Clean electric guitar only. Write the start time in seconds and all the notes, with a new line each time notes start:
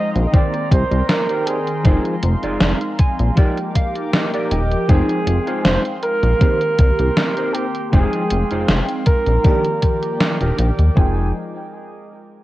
0.34 D#4 G4 A#4 C5
1.29 D#4 G4 A#4 C5
1.85 D#4 F4 G#4 C5
2.43 D#4 F4 G#4 D5
2.99 G#5, muted clean electric guitar stroke
3.37 D#4 G4 A#4 D5 G5
3.75 F5, muted clean electric guitar stroke
4.13 D#5, muted clean electric guitar stroke
4.33 D#4 G4 A#4 D5
4.51 D#5
4.89 D#4 F4 G#4 C5
5.47 D#4 F4 G#4 C5
6.03 muted clean electric guitar stroke
6.41 D#4 G4 A#4 C5
6.79 muted clean electric guitar stroke
7.37 D#4 G4 A#4 C5
7.93 D#4 F4 G#4 C5
8.51 D#4 F4 G#4 C5
9.07 muted clean electric guitar stroke
9.45 D4 D#4 G4 A#4
9.83 muted clean electric guitar stroke
10.40 D4 D#4 G4 A#4
10.97 D#4 F4 G#4